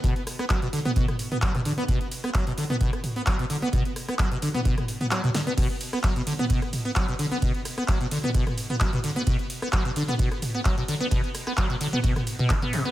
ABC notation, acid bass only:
X:1
M:4/4
L:1/16
Q:"Swing 16ths" 1/4=130
K:Bm
V:1 name="Acid bass" clef=bass
B,, z2 B, F, B,, D, B, B,, z2 B, F, B,, D, B, | B,, z2 B, F, B,, D, B, B,, z2 B, F, B,, D, B, | B,, z2 B, F, B,, D, B, B,, z2 B, F, B,, D, B, | B,, z2 B, F, B,, D, B, B,, z2 B, F, B,, D, B, |
B,, z2 B, F, B,, D, B, B,, z2 B, F, B,, D, B, | B,, z2 B, F, B,, D, B, B,, z2 B, F, B,, D, B, | B,, z2 B, F, B,, D, B, B,, z2 B,, F, B, B,, B, |]